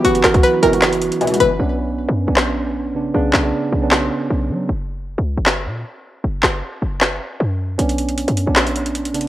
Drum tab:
HH |x--x--x--x--x-----x--x--x--x--x--x--x-x-x-x-----|------------------------------------------------|------------------------------------------------|------------------------------------------------|
CP |------x-----------------x-----------------------|------------------------x-----------------------|------x-----------------x-----------------------|------------------------x-----------------------|
SD |------o-----------------o-----------------------|------------------------o-----------------------|------o-----------------o-----------------------|------------------------o-----------------------|
BD |---------o--------------------------------------|------------------------------------------------|------------------------------------------------|------------------------------------------------|

HH |------------------------------------------------|x--x--x--x--x--x--x-----x--x--x--x--x--x--x-x---|
CP |------x-----------------x-----------------------|------------------------x-----------------------|
SD |------o-----------------o-----------------------|------------------------o-----------------------|
BD |------------------------------------------------|------------------------------------------------|